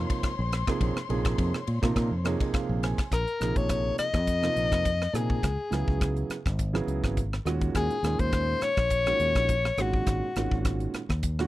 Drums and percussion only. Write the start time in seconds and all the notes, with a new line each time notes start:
0.10 kick, ride
0.23 kick, cross-stick, ride
0.52 cross-stick, ride
0.67 kick, cross-stick, ride
0.81 kick, ride
0.97 cross-stick
1.10 ride
1.25 kick, cross-stick, ride
1.38 kick, ride
1.54 cross-stick
1.67 ride
1.83 kick, cross-stick, ride
1.96 kick, cross-stick, ride
2.25 cross-stick, ride
2.40 kick, ride
2.54 kick, cross-stick, ride
2.83 cross-stick, ride
2.98 kick, cross-stick, ride
3.12 kick, cross-stick, closed hi-hat
3.28 closed hi-hat
3.41 cross-stick, closed hi-hat
3.56 kick, closed hi-hat
3.69 kick, cross-stick, closed hi-hat
3.98 cross-stick, closed hi-hat
4.14 kick, cross-stick, closed hi-hat
4.27 kick, closed hi-hat
4.43 cross-stick, closed hi-hat
4.57 closed hi-hat
4.72 kick, cross-stick, closed hi-hat
4.85 kick, closed hi-hat
5.02 cross-stick
5.15 cross-stick, closed hi-hat
5.30 kick
5.43 kick, cross-stick, closed hi-hat
5.72 cross-stick, closed hi-hat
5.88 kick
6.01 kick, cross-stick, closed hi-hat
6.17 closed hi-hat
6.30 cross-stick, closed hi-hat
6.46 kick, cross-stick, closed hi-hat
6.59 kick, closed hi-hat
6.75 cross-stick
6.88 closed hi-hat
7.04 kick, cross-stick, closed hi-hat
7.17 kick, closed hi-hat
7.33 cross-stick
7.46 cross-stick, closed hi-hat
7.61 kick, closed hi-hat
7.75 kick, cross-stick, closed hi-hat
7.91 closed hi-hat
8.04 cross-stick, closed hi-hat
8.19 kick, closed hi-hat
8.33 kick, cross-stick, closed hi-hat
8.61 cross-stick, closed hi-hat
8.77 kick, cross-stick, closed hi-hat
8.90 kick, closed hi-hat
9.06 cross-stick, closed hi-hat
9.20 closed hi-hat
9.35 kick, cross-stick, closed hi-hat
9.49 kick, closed hi-hat
9.65 cross-stick
9.78 cross-stick, closed hi-hat
9.93 kick
10.07 kick, cross-stick, closed hi-hat
10.36 cross-stick, closed hi-hat
10.51 kick
10.65 kick, cross-stick, closed hi-hat
10.80 closed hi-hat
10.94 cross-stick, closed hi-hat
11.10 kick, cross-stick, closed hi-hat
11.23 kick, closed hi-hat
11.39 cross-stick